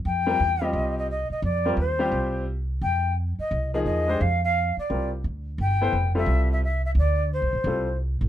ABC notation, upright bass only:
X:1
M:4/4
L:1/8
Q:"Swing" 1/4=174
K:Gphr
V:1 name="Upright bass" clef=bass
F,,2 =E,,2 C,,3 z | F,,2 E,,2 C,,4 | F,,3 z C,,2 =E,,2 | F,,3 z C,,2 D,,2 |
G,,,2 F,,,2 C,,4 | D,,2- (3D,, C,, =A,,, C,,3 A,,, |]